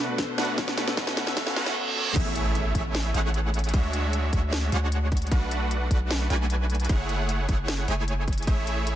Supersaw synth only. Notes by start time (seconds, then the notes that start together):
Already playing: A3 D4 F#4 B4 F#5
0.38 A3 D4 F#4 B4 F#5
0.58 A3 C#4 F#4 B4 F#5
0.97 A3 C#4 F#4 B4 F#5
1.37 A3 C#4 F#4 B4 F#5
1.56 A3 C#4 F#4 B4 F#5
2.16 A3 E4 G#4 C#5 E5
2.75 A3 E4 G#4 C#5 E5
3.14 A3 E4 G#4 C#5 F#5
3.74 G#3 D4 F#4 C#5 E5
4.33 G#3 D4 F#4 C#5 E5
4.72 G#3 D4 F#4 C#5 F#5
5.31 A3 D4 F#4 B4 F#5
5.91 A3 D4 F#4 B4 F#5
6.30 A3 D4 F#4 B4 G#5
6.89 A3 E4 G#4 C#5 F#5
7.49 A3 E4 G#4 C#5 F#5
7.88 A3 E4 G#4 C#5 G#5
8.47 A3 E4 G#4 C#5 E5